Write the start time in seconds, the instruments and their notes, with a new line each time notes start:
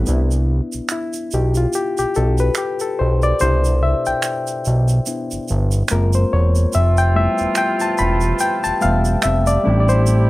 0.06 analog synth bass C2, reed electric piano B3 D4 E4, shaker
0.31 shaker
0.72 analog synth bass B1, shaker
0.89 reed electric piano E4, finger snap, shaker
1.13 shaker
1.31 analog synth bass B1, reed electric piano G4, shaker
1.55 reed electric piano F4, shaker
1.73 reed electric piano G4, shaker
1.98 analog synth bass B1, reed electric piano G4, shaker
2.15 analog synth bass B1, reed electric piano A4, shaker
2.38 reed electric piano B4, shaker
2.55 reed electric piano G4, finger snap, shaker
2.80 reed electric piano A4, shaker
2.99 analog synth bass B1, reed electric piano C5
3.22 reed electric piano D5, shaker
3.40 analog synth bass C2, reed electric piano B2 D4 E4 C5, shaker
3.64 shaker
3.83 reed electric piano E5
4.06 analog synth bass B1, reed electric piano G5, shaker
4.22 finger snap, shaker
4.47 shaker
4.65 analog synth bass B1, shaker
4.88 shaker
5.06 reed electric piano B3 D4 E4, shaker
5.31 analog synth bass G1, shaker
5.48 analog synth bass G1, shaker
5.71 shaker
5.88 analog synth bass F#1, reed electric piano G#3 A#3 C4 F4 A#4, finger snap, shaker
6.13 reed electric piano C5, shaker
6.33 analog synth bass E1, reed electric piano C#5
6.55 shaker
6.72 analog synth bass F1, horn section F3 C4 F4, analog synth pad G4 B4 G5 A5, reed electric piano E5, shaker
6.97 reed electric piano G5, shaker
7.15 reed electric piano G3 A3 B3 E4 E5
7.38 analog synth bass E1, shaker
7.55 reed electric piano G5, finger snap, shaker
7.80 reed electric piano A5, shaker
7.98 analog synth bass E1, reed electric piano B5, shaker
8.21 shaker
8.39 reed electric piano G5, shaker
8.64 analog synth bass E1, reed electric piano A5, shaker
8.81 analog synth bass E1, reed electric piano G3 A3 B3 E5 F5, shaker
9.05 shaker
9.22 analog synth bass F1, reed electric piano E5, finger snap, shaker
9.46 reed electric piano D5, shaker
9.64 analog synth bass A1, reed electric piano G3 A3 C4 D4, analog synth pad C4 D5 B5, horn section D4 E4 G4
9.80 reed electric piano D5
9.89 reed electric piano C5, shaker
10.06 shaker